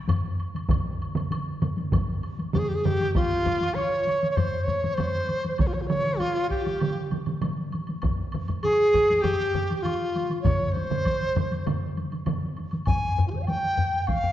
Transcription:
0.08 taiko low-mid loud
0.08 taiko high medium
0.08 high woodblock medium
0.40 high woodblock soft
0.55 taiko high medium
0.55 high woodblock soft
0.69 taiko medium
0.69 taiko low-mid loud
0.69 taiko mid medium
0.69 taiko high medium
0.69 high woodblock medium
1.02 high woodblock soft
1.15 taiko low-mid medium
1.15 taiko mid medium
1.15 taiko high soft
1.15 high woodblock soft
1.31 taiko high medium
1.31 high woodblock medium
1.62 taiko low-mid medium
1.62 taiko mid medium
1.62 taiko high soft
1.62 high woodblock medium
1.77 taiko high medium
1.77 high woodblock soft
1.92 taiko medium
1.92 taiko low-mid medium
1.92 taiko mid medium
1.92 taiko high medium
1.92 high woodblock medium
2.23 high woodblock soft
2.39 taiko high medium
2.39 high woodblock soft
2.53 2.60 G4 medium
2.53 taiko low-mid loud
2.53 taiko mid medium
2.53 taiko high medium
2.53 high woodblock medium
2.59 2.70 G#4 medium
2.69 2.76 G4 medium
2.75 2.86 G#4 medium
2.85 3.14 G4 medium
2.85 taiko low-mid medium
2.85 taiko mid loud
2.85 high woodblock soft
3.00 taiko high medium
3.00 high woodblock soft
3.15 3.76 F4 loud
3.15 taiko loud
3.15 taiko low-mid medium
3.15 taiko high medium
3.15 high woodblock soft
3.46 taiko low-mid loud
3.46 taiko high soft
3.46 high woodblock soft
3.61 taiko high medium
3.61 high woodblock soft
3.74 4.30 C#5 medium
3.74 taiko high medium
3.74 high woodblock medium
4.07 taiko high soft
4.07 high woodblock soft
4.23 taiko high soft
4.23 high woodblock soft
4.31 4.38 C#5 medium
4.36 4.60 C5 medium
4.36 taiko low-mid medium
4.36 taiko high medium
4.36 high woodblock soft
4.64 4.96 C#5 medium
4.68 taiko low-mid medium
4.68 taiko high soft
4.68 high woodblock soft
4.83 taiko low-mid medium
4.83 taiko high soft
4.83 high woodblock soft
4.94 5.57 C5 medium
4.94 high woodblock medium
4.98 taiko low-mid loud
4.98 taiko high medium
5.28 taiko high soft
5.28 high woodblock soft
5.43 taiko high soft
5.43 high woodblock soft
5.58 5.68 C#5 medium
5.58 taiko loud
5.58 taiko mid medium
5.58 taiko high medium
5.58 high woodblock soft
5.67 5.75 F4 medium
5.74 5.83 C#5 medium
5.81 5.89 F4 medium
5.87 6.21 C#5 medium
5.87 taiko mid loud
5.87 taiko high soft
5.87 high woodblock soft
6.04 taiko high soft
6.04 high woodblock soft
6.19 6.50 F4 medium
6.19 taiko high medium
6.19 high woodblock medium
6.50 7.07 G4 medium
6.50 taiko medium
6.50 high woodblock soft
6.65 taiko high soft
6.65 high woodblock soft
6.80 taiko mid medium
6.80 taiko high medium
6.80 high woodblock soft
7.11 taiko mid medium
7.11 taiko high medium
7.11 high woodblock soft
7.26 taiko mid medium
7.26 taiko high soft
7.26 high woodblock soft
7.42 taiko mid medium
7.42 taiko high medium
7.42 high woodblock medium
7.72 taiko high soft
7.72 high woodblock soft
7.87 taiko high medium
7.87 high woodblock soft
8.02 taiko medium
8.02 taiko low-mid medium
8.02 taiko high medium
8.02 high woodblock medium
8.32 taiko low-mid medium
8.32 taiko high medium
8.32 high woodblock soft
8.48 taiko low-mid medium
8.48 taiko high soft
8.48 high woodblock soft
8.63 9.23 G#4 loud
8.63 taiko high medium
8.63 high woodblock medium
8.94 taiko medium
8.94 taiko low-mid loud
8.94 taiko high medium
8.94 high woodblock soft
9.08 taiko high medium
9.08 high woodblock soft
9.22 9.84 G4 medium
9.22 taiko low-mid loud
9.22 taiko high medium
9.22 high woodblock medium
9.54 taiko low-mid medium
9.54 taiko high medium
9.54 high woodblock soft
9.70 taiko high soft
9.70 high woodblock soft
9.82 10.41 F4 medium
9.82 taiko high medium
9.82 high woodblock medium
10.15 taiko high medium
10.15 high woodblock soft
10.30 taiko high soft
10.30 high woodblock soft
10.42 10.68 C#5 medium
10.42 taiko loud
10.42 taiko low-mid loud
10.42 taiko high medium
10.42 high woodblock soft
10.46 taiko mid medium
10.68 10.74 C#5 soft
10.73 11.65 C5 medium
10.73 taiko high medium
10.73 high woodblock soft
10.91 taiko low-mid medium
10.91 taiko mid medium
10.91 taiko high medium
10.91 high woodblock soft
11.05 taiko medium
11.05 taiko high medium
11.05 high woodblock medium
11.36 taiko low-mid medium
11.36 taiko mid medium
11.36 taiko high medium
11.36 high woodblock soft
11.52 taiko high medium
11.52 high woodblock soft
11.66 taiko low-mid loud
11.66 taiko mid loud
11.66 taiko high medium
11.66 high woodblock medium
11.97 taiko high medium
11.97 high woodblock soft
12.12 taiko high soft
12.12 high woodblock soft
12.26 taiko low-mid loud
12.26 taiko mid medium
12.26 taiko high medium
12.26 high woodblock soft
12.57 taiko high soft
12.57 high woodblock soft
12.71 taiko high medium
12.71 high woodblock soft
12.86 13.27 G#5 medium
12.86 taiko medium
12.86 taiko low-mid medium
12.86 taiko high medium
12.86 high woodblock soft
13.18 taiko low-mid medium
13.28 13.30 F4 soft
13.28 13.33 G4 soft
13.33 13.36 G#4 soft
13.33 13.39 C5 soft
13.33 taiko high soft
13.40 13.42 C#5 medium
13.40 13.46 F5 medium
13.47 14.00 G5 medium
13.47 taiko high medium
13.47 high woodblock soft
13.78 taiko low-mid medium
14.00 14.09 G5 medium
14.07 14.32 F5 medium
14.07 taiko medium
14.07 taiko low-mid medium
14.07 taiko high medium
14.07 high woodblock soft
14.24 taiko low-mid medium

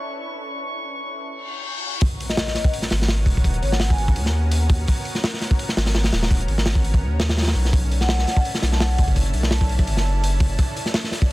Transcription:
0.00 1.26 C#4 medium
0.00 1.26 D4 medium
0.00 1.26 E4 medium
0.00 1.26 A4 medium
0.00 1.26 B4 medium
0.00 1.30 C#6 medium
1.30 reverse cymbal medium
2.01 7.69 B3 medium
2.01 11.32 C#4 medium
2.01 7.69 F#4 medium
2.01 7.69 A#4 medium
2.01 kick loud
2.01 open hi-hat medium
2.01 impact medium
2.20 open hi-hat medium
2.29 2.45 D#5 medium
2.29 snare soft
2.37 snare loud
2.37 open hi-hat medium
2.47 2.68 D#5 medium
2.47 snare medium
2.55 snare soft
2.55 open hi-hat medium
2.64 kick loud
2.73 open hi-hat medium
2.82 snare soft
2.90 3.26 G#1 loud
2.90 snare medium
2.90 open hi-hat medium
3.02 snare soft
3.08 snare loud
3.08 open hi-hat medium
3.26 3.61 D#1 loud
3.26 kick loud
3.26 open hi-hat medium
3.37 kick medium
3.44 kick loud
3.44 open hi-hat medium
3.54 closed hi-hat soft
3.62 4.18 G#1 medium
3.62 3.70 C#5 medium
3.62 open hi-hat medium
3.72 3.88 F#5 loud
3.72 snare medium
3.80 snare loud
3.80 open hi-hat medium
3.90 4.16 G#5 medium
3.90 kick loud
3.98 open hi-hat medium
4.08 kick medium
4.16 4.86 D#2 medium
4.16 open hi-hat medium
4.26 snare soft
4.51 open hi-hat loud
4.69 kick loud
4.69 open hi-hat medium
4.88 kick loud
4.88 open hi-hat medium
5.05 open hi-hat medium
5.15 snare soft
5.24 snare loud
5.24 open hi-hat medium
5.34 snare medium
5.41 snare soft
5.41 open hi-hat medium
5.51 kick loud
5.59 open hi-hat medium
5.69 snare soft
5.77 6.11 G#1 loud
5.77 snare loud
5.77 open hi-hat medium
5.86 snare loud
5.86 open hi-hat medium
5.95 snare loud
5.95 open hi-hat medium
6.04 snare loud
6.04 open hi-hat medium
6.13 6.47 D#1 loud
6.13 snare loud
6.13 open hi-hat medium
6.23 snare loud
6.23 open hi-hat medium
6.31 kick loud
6.31 open hi-hat medium
6.40 closed hi-hat soft
6.48 7.04 G#1 medium
6.48 open hi-hat medium
6.58 snare medium
6.66 snare loud
6.66 open hi-hat medium
6.75 kick loud
6.84 open hi-hat medium
6.94 kick loud
7.02 7.55 D#2 medium
7.20 snare loud
7.20 open hi-hat medium
7.29 snare loud
7.37 snare loud
7.37 open hi-hat medium
7.42 snare medium
7.42 open hi-hat medium
7.47 snare loud
7.47 open hi-hat medium
7.55 8.26 B1 medium
7.55 open hi-hat medium
7.65 snare soft
7.73 11.32 D4 medium
7.73 11.32 E4 medium
7.73 11.32 A4 medium
7.73 kick loud
7.73 open hi-hat medium
7.91 open hi-hat medium
8.01 8.17 F#5 loud
8.01 snare soft
8.09 snare loud
8.09 open hi-hat medium
8.18 8.40 F#5 medium
8.18 snare medium
8.27 snare soft
8.27 open hi-hat medium
8.37 kick loud
8.45 open hi-hat medium
8.55 snare soft
8.62 8.97 B1 loud
8.62 snare medium
8.62 open hi-hat medium
8.72 8.79 A5 medium
8.72 snare soft
8.80 9.02 F#5 loud
8.80 snare loud
8.80 open hi-hat medium
8.98 9.33 F#1 loud
8.98 kick loud
8.98 open hi-hat medium
9.08 kick loud
9.16 kick loud
9.16 open hi-hat medium
9.26 closed hi-hat soft
9.33 9.89 B1 medium
9.33 open hi-hat medium
9.43 snare medium
9.51 9.74 A5 medium
9.51 snare loud
9.51 open hi-hat medium
9.61 kick loud
9.69 open hi-hat medium
9.79 kick medium
9.87 10.58 F#1 medium
9.87 open hi-hat medium
9.97 10.23 A5 medium
9.97 snare soft
10.24 open hi-hat medium
10.40 kick loud
10.40 open hi-hat medium
10.58 kick loud
10.58 open hi-hat medium
10.76 open hi-hat medium
10.86 snare soft
10.94 snare loud
10.94 open hi-hat medium
11.04 snare medium
11.12 snare soft
11.12 open hi-hat medium
11.22 kick medium

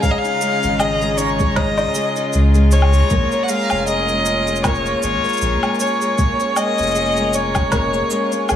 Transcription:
0.00 3.07 C#3 medium
0.00 1.55 C#3 medium
0.00 0.41 G#3 medium
0.00 3.07 C#4 medium
0.00 0.23 D#4 medium
0.00 8.56 F4 medium
0.00 0.80 G#4 medium
0.00 3.07 D#5 medium
0.00 0.12 F5 loud
0.00 8.56 A#5 medium
0.00 kick loud
0.00 shaker soft
0.11 0.19 D#5 medium
0.18 0.81 F5 loud
0.24 0.62 D#4 medium
0.24 shaker soft
0.41 1.01 G#3 medium
0.41 shaker medium
0.63 1.87 G#1 medium
0.63 1.17 D#4 medium
0.63 shaker soft
0.79 2.33 G#4 medium
0.79 1.19 D#5 medium
0.79 low woodblock medium
0.79 shaker soft
1.01 1.40 G#3 medium
1.01 shaker soft
1.18 1.77 D#4 medium
1.18 1.57 C#5 medium
1.18 shaker medium
1.40 1.95 G#3 medium
1.40 kick loud
1.40 shaker soft
1.56 3.10 C#3 medium
1.56 2.33 D#5 medium
1.56 kick loud
1.56 snare medium
1.78 2.15 D#4 medium
1.78 low woodblock medium
1.78 shaker soft
1.95 2.55 G#3 medium
1.95 shaker medium
2.16 2.71 D#4 medium
2.16 shaker soft
2.33 3.02 C#2 medium
2.33 3.87 G#4 medium
2.33 shaker soft
2.55 2.93 G#3 medium
2.55 shaker soft
2.72 3.19 D#4 medium
2.72 3.45 C#5 medium
2.72 shaker medium
2.82 low woodblock medium
2.93 3.49 G#3 medium
2.93 shaker soft
3.10 3.26 A#1 medium
3.10 4.63 A#2 medium
3.10 8.56 A#3 medium
3.10 8.56 G#4 medium
3.10 8.56 C#5 medium
3.10 kick loud
3.10 shaker soft
3.32 3.70 C#4 medium
3.32 shaker soft
3.43 3.50 F#5 medium
3.49 4.09 G#3 medium
3.49 3.87 F5 loud
3.49 shaker medium
3.70 4.95 F1 medium
3.70 4.25 C#4 medium
3.70 low woodblock medium
3.70 shaker soft
3.87 5.41 G#4 medium
3.87 4.61 D#5 loud
3.87 shaker soft
4.08 4.47 G#3 medium
4.08 shaker soft
4.26 4.86 C#4 medium
4.26 shaker medium
4.47 5.03 G#3 medium
4.47 shaker soft
4.56 shaker soft
4.64 6.17 A#2 medium
4.64 5.01 C#5 loud
4.64 kick loud
4.64 snare medium
4.64 low woodblock medium
4.64 shaker soft
4.75 shaker soft
4.86 5.24 C#4 medium
4.86 shaker soft
5.03 5.18 G#1 medium
5.03 5.63 G#3 medium
5.03 5.76 C#5 loud
5.03 shaker medium
5.24 5.80 C#4 medium
5.24 shaker soft
5.29 shaker soft
5.33 shaker soft
5.37 6.94 G#4 medium
5.37 shaker soft
5.41 5.56 A#1 medium
5.41 shaker soft
5.63 6.01 G#3 medium
5.63 low woodblock medium
5.63 shaker soft
5.75 shaker soft
5.80 6.39 C#4 medium
5.80 6.59 C#5 medium
5.80 shaker medium
6.01 6.56 G#3 medium
6.01 shaker soft
6.18 7.71 A#2 medium
6.18 kick loud
6.18 shaker soft
6.40 6.78 C#4 medium
6.40 shaker soft
6.56 7.16 G#3 medium
6.56 7.36 D#5 loud
6.56 low woodblock medium
6.56 shaker medium
6.78 8.02 F1 medium
6.78 7.33 C#4 medium
6.78 shaker soft
6.83 shaker soft
6.87 shaker soft
6.91 8.49 G#4 medium
6.91 shaker soft
6.95 shaker soft
7.06 shaker soft
7.11 shaker soft
7.17 7.55 G#3 medium
7.17 shaker soft
7.33 7.93 C#4 medium
7.33 8.56 C#5 medium
7.33 shaker medium
7.55 8.10 G#3 medium
7.55 kick medium
7.55 low woodblock medium
7.55 shaker soft
7.72 8.56 A#2 medium
7.72 kick loud
7.72 snare medium
7.72 shaker soft
7.94 8.32 C#4 medium
7.94 shaker soft
8.10 8.56 G#3 medium
8.10 shaker medium
8.32 8.56 C#4 medium
8.32 shaker soft
8.49 8.56 A#1 medium
8.49 8.56 G#4 medium
8.49 low woodblock medium
8.49 shaker soft

